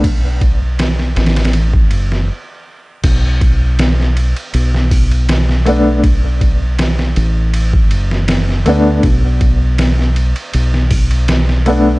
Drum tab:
CC |--------------------------------|x-------------------------------|--------------------------------|--------------------------------|
RD |x---x---x---xxxxx---x-----------|x---x---x---x-x-x-----x-x---x---|x---x---x---x---x---x---x---x---|x---x---x---x-x-x-----x-x---x---|
HH |--------------------------------|--------------------o-----------|--------------------------------|--------------------o-----------|
SD |--------o-o-oooo------o---------|--------o-o-------o-----o-o-----|--------o-o-----------o-o-o-----|--------o-o-------o-----o-o-----|
BD |o---o-------------o-------------|o---o---------------o-----------|o---o-------------o-------------|o---o---------------o-----------|